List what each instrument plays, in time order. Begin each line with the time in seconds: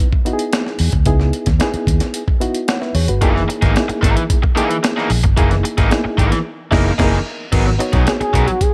0.13 kick
0.25 reed electric piano B3 D#4 E4 F#4, closed hi-hat
0.33 reed electric piano G#4
0.39 closed hi-hat
0.53 snare, closed hi-hat
0.66 snare
0.79 fingered electric bass E2, open hi-hat
0.92 fingered electric bass D2, kick, closed hi-hat
1.06 fingered electric bass C#2, reed electric piano B3 D#4 E4 G#4, kick, closed hi-hat
1.20 snare
1.33 closed hi-hat
1.46 fingered electric bass D#2, kick, snare, closed hi-hat
1.59 reed electric piano B3 D#4 E4 G#4, snare, closed hi-hat
1.74 muted fingered electric bass stroke, closed hi-hat
1.87 fingered electric bass D#2, kick, closed hi-hat
2.00 snare, closed hi-hat
2.14 closed hi-hat
2.28 kick
2.40 reed electric piano B3 D#4 E4 F#4, closed hi-hat
2.55 closed hi-hat
2.68 reed electric piano C#5 F#5, snare, closed hi-hat
2.81 reed electric piano B4 E5, snare
2.95 fingered electric bass E2, reed electric piano G#4 C#5, open hi-hat
3.08 fingered electric bass G1, reed electric piano F#4 B4, closed hi-hat
3.21 fingered electric bass F#1, overdriven electric guitar E3 A#3 D#4 G#4, reed electric piano A#3 D#4 E4 G#4, kick, closed hi-hat
3.35 muted overdriven electric guitar stroke, snare
3.48 muted overdriven electric guitar stroke, closed hi-hat
3.62 fingered electric bass G#1, overdriven electric guitar E3 A#3 D#4 G#4, kick, snare, closed hi-hat
3.75 reed electric piano A#3 D#4 E4 G#4, muted overdriven electric guitar stroke, snare, closed hi-hat
3.88 muted overdriven electric guitar stroke, muted fingered electric bass stroke, closed hi-hat
4.02 fingered electric bass G#1, overdriven electric guitar E3 A#3 D#4 A#4, kick, snare, closed hi-hat
4.16 muted overdriven electric guitar stroke, closed hi-hat
4.30 kick, closed hi-hat
4.42 muted overdriven electric guitar stroke, kick
4.55 overdriven electric guitar E3 A#3 D#4 G#4, reed electric piano A#3 D#4 E4 G#4, closed hi-hat
4.70 muted overdriven electric guitar stroke, closed hi-hat
4.83 muted overdriven electric guitar stroke, snare, closed hi-hat
4.96 overdriven electric guitar E3 A#3 D#4 G#4, snare
5.10 fingered electric bass A#1, muted overdriven electric guitar stroke, open hi-hat
5.24 fingered electric bass G1, muted overdriven electric guitar stroke, kick, closed hi-hat
5.36 fingered electric bass F#1, overdriven electric guitar E3 A#3 D#4 G#4, reed electric piano A#3 D#4 E4 G#4, kick, closed hi-hat
5.50 muted overdriven electric guitar stroke, snare, closed hi-hat
5.64 muted overdriven electric guitar stroke, closed hi-hat
5.78 fingered electric bass G#1, overdriven electric guitar E3 A#3 D#4 G#4, kick, snare, closed hi-hat
5.90 reed electric piano A#3 D#4 E4 G#4, muted overdriven electric guitar stroke, snare, closed hi-hat
6.04 muted overdriven electric guitar stroke, muted fingered electric bass stroke
6.18 fingered electric bass G#1, overdriven electric guitar E3 A#3 D#4 G#4, kick, closed hi-hat
6.31 muted overdriven electric guitar stroke, snare, closed hi-hat
6.71 fingered electric bass F#1, overdriven electric guitar E3 A#3 D#4 A#4, reed electric piano D#4 E4 G#4, kick, snare, crash
6.77 reed electric piano A#3
6.98 fingered electric bass F#1, overdriven electric guitar E3 A#3 D#4 G#4, reed electric piano D#4 E4 G#4, kick, snare, crash
7.04 reed electric piano A#3
7.52 fingered electric bass G#1, overdriven electric guitar F#3 B3 D#4 G#4, reed electric piano B3 D#4 F#4 A#4, kick, closed hi-hat, crash
7.66 muted overdriven electric guitar stroke, snare
7.79 reed electric piano B3 D#4 F#4 C#5, muted overdriven electric guitar stroke, closed hi-hat
7.93 fingered electric bass B1, overdriven electric guitar F#3 B3 D#4 G#4, kick, snare, closed hi-hat
8.06 analog synth lead G#4, muted overdriven electric guitar stroke, snare, closed hi-hat
8.19 analog synth lead G#4, muted fingered electric bass stroke, muted overdriven electric guitar stroke, closed hi-hat
8.33 fingered electric bass B1, overdriven electric guitar F#3 B3 D#4 A#4, kick, snare, closed hi-hat
8.47 analog synth lead F#4, muted overdriven electric guitar stroke, closed hi-hat
8.61 analog synth lead G#4, kick, closed hi-hat